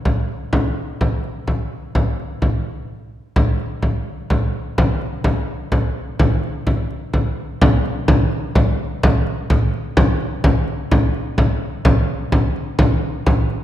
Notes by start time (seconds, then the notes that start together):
0.05 frame drum
0.53 frame drum
1.01 frame drum
1.24 frame drum
1.47 frame drum
1.95 frame drum
2.19 frame drum
2.42 frame drum
3.36 frame drum
3.60 frame drum
3.82 frame drum
4.30 frame drum
4.78 frame drum
5.01 frame drum
5.24 frame drum
5.72 frame drum
6.19 frame drum
6.44 frame drum
6.67 frame drum
6.91 frame drum
7.14 frame drum
7.62 frame drum
7.86 frame drum
8.08 frame drum
8.32 frame drum
8.55 frame drum
9.03 frame drum
9.27 frame drum
9.50 frame drum
9.74 frame drum
9.97 frame drum
10.20 frame drum
10.44 frame drum
10.68 frame drum
10.91 frame drum
11.14 frame drum
11.38 frame drum
11.85 frame drum
12.32 frame drum
12.56 frame drum
12.79 frame drum
13.26 frame drum
13.50 frame drum